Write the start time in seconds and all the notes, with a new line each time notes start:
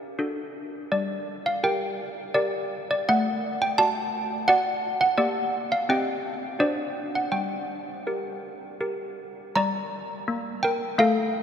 Already playing: G4 A#4 D5
0.19 D4 F#4 A4
0.92 G3 D5
1.46 F5
1.63 G4 A#4 G5
2.34 G4 A#4 D5
2.91 D5
3.09 A3 F#5
3.62 G5
3.78 F#4 D5 A5
4.48 F#4 D5 F#5
5.01 F#5
5.18 A#3 G4 D5
5.72 F5
5.89 C4 G4 D#5 G5
6.59 D4 F#4 C5 D5
7.15 F#5
7.32 G3 G5
8.07 G4 A#4
8.81 G4 A#4
9.56 G3 D5 A#5
10.28 A#3
10.63 A#4 G5
10.98 A3 A4 F5